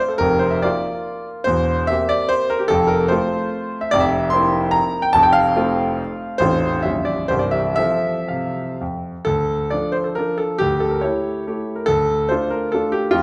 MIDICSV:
0, 0, Header, 1, 2, 480
1, 0, Start_track
1, 0, Key_signature, -1, "major"
1, 0, Tempo, 423131
1, 246, Time_signature, 3, 2, 24, 8
1, 2649, Tempo, 400802
1, 6009, Tempo, 422535
1, 7449, Tempo, 461894
1, 8889, Tempo, 506329
1, 9849, Tempo, 455581
1, 10343, Key_signature, -1, "minor"
1, 11289, Tempo, 431655
1, 12729, Tempo, 414938
1, 14762, End_track
2, 0, Start_track
2, 0, Title_t, "Grand piano"
2, 0, Program_c, 0, 0
2, 0, Note_on_c, 0, 57, 57
2, 0, Note_on_c, 0, 60, 51
2, 0, Note_on_c, 0, 65, 63
2, 95, Note_on_c, 0, 69, 67
2, 197, Note_off_c, 0, 57, 0
2, 201, Note_off_c, 0, 60, 0
2, 205, Note_off_c, 0, 65, 0
2, 205, Note_on_c, 0, 70, 116
2, 226, Note_on_c, 0, 29, 80
2, 230, Note_off_c, 0, 69, 0
2, 231, Note_on_c, 0, 41, 84
2, 441, Control_c, 0, 64, 127
2, 444, Note_on_c, 0, 72, 94
2, 465, Note_off_c, 0, 70, 0
2, 574, Note_on_c, 0, 76, 69
2, 588, Note_off_c, 0, 72, 0
2, 708, Note_on_c, 0, 74, 98
2, 711, Note_off_c, 0, 29, 0
2, 713, Note_off_c, 0, 41, 0
2, 718, Note_off_c, 0, 76, 0
2, 731, Note_on_c, 0, 58, 59
2, 736, Note_on_c, 0, 65, 61
2, 749, Control_c, 0, 64, 0
2, 1431, Note_off_c, 0, 74, 0
2, 1626, Note_off_c, 0, 58, 0
2, 1629, Note_off_c, 0, 65, 0
2, 1636, Note_on_c, 0, 72, 114
2, 1665, Note_on_c, 0, 28, 72
2, 1668, Note_on_c, 0, 40, 82
2, 1882, Control_c, 0, 64, 127
2, 2125, Note_on_c, 0, 76, 110
2, 2141, Note_off_c, 0, 28, 0
2, 2141, Note_off_c, 0, 72, 0
2, 2142, Note_off_c, 0, 40, 0
2, 2152, Note_on_c, 0, 58, 57
2, 2155, Note_on_c, 0, 67, 65
2, 2158, Note_on_c, 0, 60, 53
2, 2175, Control_c, 0, 64, 0
2, 2369, Note_on_c, 0, 74, 113
2, 2392, Note_off_c, 0, 76, 0
2, 2593, Note_on_c, 0, 72, 114
2, 2628, Note_off_c, 0, 74, 0
2, 2843, Note_on_c, 0, 70, 99
2, 2856, Note_off_c, 0, 72, 0
2, 2937, Note_off_c, 0, 67, 0
2, 2955, Note_on_c, 0, 67, 74
2, 2978, Note_off_c, 0, 70, 0
2, 3058, Note_off_c, 0, 58, 0
2, 3061, Note_off_c, 0, 60, 0
2, 3063, Note_on_c, 0, 69, 122
2, 3088, Note_off_c, 0, 67, 0
2, 3088, Note_on_c, 0, 41, 93
2, 3089, Note_on_c, 0, 29, 74
2, 3293, Note_on_c, 0, 70, 97
2, 3316, Note_off_c, 0, 69, 0
2, 3333, Control_c, 0, 64, 127
2, 3545, Note_on_c, 0, 72, 99
2, 3566, Note_off_c, 0, 41, 0
2, 3567, Note_off_c, 0, 29, 0
2, 3568, Note_off_c, 0, 70, 0
2, 3572, Note_on_c, 0, 57, 66
2, 3578, Note_on_c, 0, 60, 59
2, 3586, Note_on_c, 0, 65, 67
2, 3605, Control_c, 0, 64, 0
2, 4416, Note_on_c, 0, 76, 85
2, 4438, Note_off_c, 0, 72, 0
2, 4515, Note_off_c, 0, 57, 0
2, 4517, Note_off_c, 0, 60, 0
2, 4522, Note_off_c, 0, 65, 0
2, 4538, Note_on_c, 0, 74, 127
2, 4550, Note_off_c, 0, 76, 0
2, 4562, Note_on_c, 0, 41, 100
2, 4566, Note_on_c, 0, 29, 90
2, 4645, Note_on_c, 0, 76, 97
2, 4666, Note_off_c, 0, 74, 0
2, 4790, Control_c, 0, 64, 127
2, 5003, Note_on_c, 0, 84, 107
2, 5018, Note_off_c, 0, 41, 0
2, 5018, Note_off_c, 0, 76, 0
2, 5020, Note_off_c, 0, 29, 0
2, 5027, Note_on_c, 0, 58, 70
2, 5033, Note_on_c, 0, 60, 68
2, 5042, Note_on_c, 0, 64, 73
2, 5495, Note_on_c, 0, 82, 112
2, 5517, Note_off_c, 0, 84, 0
2, 5551, Control_c, 0, 64, 0
2, 5867, Note_on_c, 0, 79, 92
2, 5869, Note_off_c, 0, 82, 0
2, 5956, Note_off_c, 0, 58, 0
2, 5959, Note_off_c, 0, 60, 0
2, 5963, Note_off_c, 0, 64, 0
2, 5995, Note_on_c, 0, 81, 127
2, 5998, Note_off_c, 0, 79, 0
2, 6015, Note_on_c, 0, 29, 83
2, 6023, Note_on_c, 0, 41, 89
2, 6109, Note_on_c, 0, 79, 96
2, 6119, Note_off_c, 0, 81, 0
2, 6219, Note_on_c, 0, 77, 117
2, 6239, Note_off_c, 0, 79, 0
2, 6245, Control_c, 0, 64, 127
2, 6481, Note_on_c, 0, 57, 63
2, 6486, Note_off_c, 0, 29, 0
2, 6486, Note_on_c, 0, 60, 68
2, 6490, Note_off_c, 0, 41, 0
2, 6496, Note_on_c, 0, 65, 69
2, 6992, Control_c, 0, 64, 0
2, 7396, Note_off_c, 0, 57, 0
2, 7399, Note_off_c, 0, 60, 0
2, 7404, Note_off_c, 0, 65, 0
2, 7419, Note_on_c, 0, 72, 121
2, 7436, Note_off_c, 0, 77, 0
2, 7441, Note_on_c, 0, 33, 88
2, 7441, Note_on_c, 0, 57, 62
2, 7442, Note_on_c, 0, 21, 72
2, 7452, Note_on_c, 0, 60, 63
2, 7456, Note_on_c, 0, 65, 61
2, 7662, Control_c, 0, 64, 127
2, 7859, Note_off_c, 0, 57, 0
2, 7864, Note_off_c, 0, 60, 0
2, 7867, Note_off_c, 0, 65, 0
2, 7882, Note_on_c, 0, 76, 86
2, 7887, Note_off_c, 0, 33, 0
2, 7888, Note_off_c, 0, 21, 0
2, 7891, Note_off_c, 0, 72, 0
2, 7901, Note_on_c, 0, 55, 45
2, 7902, Note_on_c, 0, 22, 60
2, 7904, Note_on_c, 0, 34, 68
2, 7906, Note_on_c, 0, 61, 44
2, 7909, Note_on_c, 0, 65, 43
2, 7917, Control_c, 0, 64, 0
2, 8115, Note_on_c, 0, 74, 87
2, 8132, Control_c, 0, 64, 127
2, 8139, Note_off_c, 0, 76, 0
2, 8349, Note_off_c, 0, 55, 0
2, 8352, Note_off_c, 0, 61, 0
2, 8354, Note_off_c, 0, 65, 0
2, 8357, Note_on_c, 0, 72, 104
2, 8373, Note_on_c, 0, 55, 49
2, 8375, Note_off_c, 0, 74, 0
2, 8377, Note_off_c, 0, 22, 0
2, 8378, Note_off_c, 0, 34, 0
2, 8378, Note_on_c, 0, 24, 64
2, 8380, Note_on_c, 0, 36, 69
2, 8381, Note_on_c, 0, 60, 53
2, 8391, Note_on_c, 0, 70, 48
2, 8408, Control_c, 0, 64, 0
2, 8469, Note_on_c, 0, 74, 74
2, 8496, Note_off_c, 0, 72, 0
2, 8596, Note_on_c, 0, 76, 95
2, 8598, Control_c, 0, 64, 127
2, 8615, Note_off_c, 0, 74, 0
2, 8834, Note_off_c, 0, 76, 0
2, 8838, Note_off_c, 0, 55, 0
2, 8842, Note_off_c, 0, 60, 0
2, 8847, Note_off_c, 0, 70, 0
2, 8850, Note_on_c, 0, 76, 115
2, 8865, Note_on_c, 0, 69, 60
2, 8867, Note_off_c, 0, 24, 0
2, 8868, Note_off_c, 0, 36, 0
2, 8870, Note_on_c, 0, 60, 57
2, 8871, Note_on_c, 0, 53, 66
2, 8902, Control_c, 0, 64, 0
2, 9080, Control_c, 0, 64, 127
2, 9217, Note_off_c, 0, 53, 0
2, 9263, Note_off_c, 0, 69, 0
2, 9266, Note_off_c, 0, 60, 0
2, 9353, Note_on_c, 0, 77, 64
2, 9355, Note_off_c, 0, 76, 0
2, 9373, Note_on_c, 0, 48, 53
2, 9707, Note_off_c, 0, 48, 0
2, 9840, Note_off_c, 0, 77, 0
2, 9852, Note_on_c, 0, 41, 58
2, 9861, Control_c, 0, 64, 0
2, 10197, Note_off_c, 0, 41, 0
2, 10313, Note_on_c, 0, 69, 102
2, 10333, Note_on_c, 0, 38, 75
2, 10559, Control_c, 0, 64, 127
2, 10795, Note_on_c, 0, 74, 88
2, 10799, Note_off_c, 0, 38, 0
2, 10803, Note_off_c, 0, 69, 0
2, 10814, Note_on_c, 0, 53, 51
2, 10819, Note_on_c, 0, 62, 53
2, 10824, Note_on_c, 0, 69, 59
2, 10833, Control_c, 0, 64, 0
2, 11022, Note_on_c, 0, 72, 86
2, 11048, Note_off_c, 0, 74, 0
2, 11134, Note_off_c, 0, 69, 0
2, 11150, Note_on_c, 0, 69, 66
2, 11158, Note_off_c, 0, 72, 0
2, 11246, Note_off_c, 0, 53, 0
2, 11249, Note_off_c, 0, 62, 0
2, 11266, Note_on_c, 0, 70, 91
2, 11278, Note_off_c, 0, 69, 0
2, 11297, Note_on_c, 0, 53, 46
2, 11302, Note_on_c, 0, 62, 44
2, 11306, Note_on_c, 0, 69, 55
2, 11498, Note_off_c, 0, 69, 0
2, 11515, Note_on_c, 0, 69, 89
2, 11517, Note_off_c, 0, 70, 0
2, 11725, Note_off_c, 0, 53, 0
2, 11727, Note_off_c, 0, 62, 0
2, 11746, Note_on_c, 0, 67, 111
2, 11759, Note_off_c, 0, 69, 0
2, 11779, Note_on_c, 0, 38, 70
2, 11962, Control_c, 0, 64, 127
2, 11989, Note_on_c, 0, 69, 87
2, 11996, Note_off_c, 0, 67, 0
2, 12104, Note_on_c, 0, 70, 61
2, 12120, Note_off_c, 0, 69, 0
2, 12224, Note_on_c, 0, 73, 83
2, 12239, Note_on_c, 0, 57, 49
2, 12241, Note_off_c, 0, 70, 0
2, 12245, Note_off_c, 0, 38, 0
2, 12249, Note_on_c, 0, 64, 51
2, 12251, Note_on_c, 0, 67, 61
2, 12264, Control_c, 0, 64, 0
2, 12679, Note_off_c, 0, 57, 0
2, 12684, Note_off_c, 0, 64, 0
2, 12685, Note_off_c, 0, 67, 0
2, 12732, Note_on_c, 0, 57, 46
2, 12740, Note_on_c, 0, 67, 54
2, 12743, Note_on_c, 0, 64, 45
2, 13062, Note_on_c, 0, 70, 61
2, 13069, Note_off_c, 0, 73, 0
2, 13155, Note_off_c, 0, 57, 0
2, 13160, Note_off_c, 0, 67, 0
2, 13161, Note_off_c, 0, 64, 0
2, 13182, Note_on_c, 0, 69, 119
2, 13190, Note_off_c, 0, 70, 0
2, 13209, Note_on_c, 0, 38, 73
2, 13387, Control_c, 0, 64, 127
2, 13675, Note_on_c, 0, 72, 94
2, 13682, Note_off_c, 0, 38, 0
2, 13683, Note_off_c, 0, 69, 0
2, 13697, Note_on_c, 0, 57, 51
2, 13704, Note_on_c, 0, 62, 52
2, 13707, Control_c, 0, 64, 0
2, 13707, Note_on_c, 0, 65, 58
2, 13927, Note_on_c, 0, 70, 80
2, 13934, Note_off_c, 0, 72, 0
2, 14143, Note_off_c, 0, 57, 0
2, 14146, Note_off_c, 0, 62, 0
2, 14148, Note_off_c, 0, 65, 0
2, 14175, Note_on_c, 0, 69, 90
2, 14179, Note_off_c, 0, 70, 0
2, 14201, Note_on_c, 0, 57, 50
2, 14204, Note_on_c, 0, 62, 50
2, 14204, Note_on_c, 0, 65, 55
2, 14408, Note_on_c, 0, 67, 96
2, 14419, Note_off_c, 0, 69, 0
2, 14609, Note_off_c, 0, 65, 0
2, 14616, Note_off_c, 0, 57, 0
2, 14618, Note_off_c, 0, 62, 0
2, 14626, Note_on_c, 0, 65, 103
2, 14647, Note_off_c, 0, 67, 0
2, 14647, Note_on_c, 0, 41, 80
2, 14762, Note_off_c, 0, 41, 0
2, 14762, Note_off_c, 0, 65, 0
2, 14762, End_track
0, 0, End_of_file